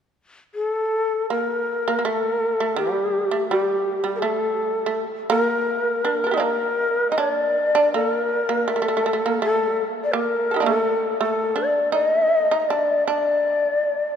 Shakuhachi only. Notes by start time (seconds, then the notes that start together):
0.55 A4
1.31 A#4
2.07 A4
2.79 G4
3.50 G4
4.15 A#4
4.19 A4
5.30 A#4
6.35 D5
6.42 A#4
7.11 D#5
7.19 C#5
7.32 D5
7.94 A4
8.11 A#4
8.70 A4
9.43 A4
10.04 D5
10.12 A#4
10.68 A4
11.22 A4
11.58 D5
11.93 D#5
12.62 D#5
12.69 D5
13.07 D5